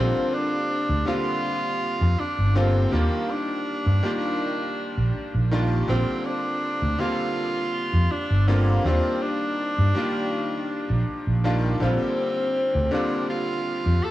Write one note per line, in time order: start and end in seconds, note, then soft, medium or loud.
0.00 0.10 A#1 medium
0.00 1.02 D3 medium
0.00 1.03 G3 medium
0.00 1.03 A#3 medium
0.00 0.35 C4 loud
0.00 1.04 C4 medium
0.00 1.04 F4 loud
0.34 1.07 D4 loud
0.90 1.02 D2 loud
1.06 2.51 D3 medium
1.06 2.51 G3 medium
1.06 2.51 A#3 medium
1.06 2.52 C4 medium
1.06 2.21 F4 loud
1.06 2.52 F4 loud
2.01 2.14 F2 loud
2.19 2.58 D4 loud
2.38 2.85 G1 loud
2.55 2.88 D3 medium
2.55 2.88 G3 medium
2.55 2.89 A#3 medium
2.55 2.89 C4 medium
2.55 2.95 C4 loud
2.55 2.89 F4 loud
2.91 3.07 D#2 medium
2.91 3.99 D#3 medium
2.91 3.99 G3 medium
2.91 4.00 A#3 medium
2.91 3.32 A#3 loud
2.91 4.00 D4 medium
2.91 4.00 F4 loud
3.31 5.53 D4 loud
3.86 3.99 G2 medium
4.03 5.47 D#3 medium
4.03 5.47 G3 medium
4.03 5.48 A#3 medium
4.03 5.48 D4 medium
4.03 5.49 F4 loud
4.98 5.10 A#1 medium
5.34 5.81 A#1 loud
5.51 5.84 D#3 loud
5.51 5.85 G3 medium
5.51 5.85 A#3 medium
5.51 5.85 D4 medium
5.51 5.85 F4 loud
5.88 6.03 A#1 medium
5.88 6.95 D3 medium
5.88 6.96 G3 medium
5.88 6.96 A#3 medium
5.88 6.27 C4 loud
5.88 6.96 C4 medium
5.88 6.97 F4 medium
6.26 7.01 D4 loud
6.82 6.95 D2 loud
6.99 8.43 D3 medium
6.99 8.44 G3 medium
6.99 8.44 A#3 medium
6.99 8.44 C4 medium
6.99 8.13 F4 loud
6.99 8.45 F4 loud
7.94 8.06 F2 medium
8.11 8.50 D4 loud
8.30 8.77 G1 medium
8.47 8.81 D3 medium
8.47 8.81 G3 medium
8.47 8.85 A#3 medium
8.47 8.81 A#3 medium
8.47 8.81 C4 medium
8.47 8.81 F4 loud
8.84 8.99 D#2 loud
8.84 9.92 D#3 medium
8.84 9.92 G3 medium
8.84 9.92 A#3 medium
8.84 9.24 C4 loud
8.84 9.93 D4 medium
8.84 9.93 F4 loud
9.23 11.45 D4 loud
9.79 9.91 G2 loud
9.95 11.40 D#3 medium
9.95 11.40 G3 medium
9.95 11.40 A#3 medium
9.95 11.41 D4 medium
9.95 11.41 F4 loud
10.90 11.02 A#1 medium
11.27 11.74 A#1 loud
11.44 11.77 D#3 loud
11.44 11.77 G3 medium
11.44 11.77 A#3 medium
11.44 11.78 D4 medium
11.44 11.78 F4 loud
11.80 11.95 A#1 loud
11.80 12.88 D3 medium
11.80 12.88 G3 medium
11.80 12.88 A#3 medium
11.80 12.94 C4 loud
11.80 12.89 C4 medium
11.80 12.89 F4 loud
12.75 12.88 D2 loud
12.91 14.11 D3 medium
12.91 14.11 G3 medium
12.91 14.11 A#3 medium
12.91 14.11 C4 medium
12.91 13.29 D4 medium
12.91 14.11 F4 loud
13.30 14.05 F4 loud
13.86 13.99 F2 medium
14.04 14.11 A4 loud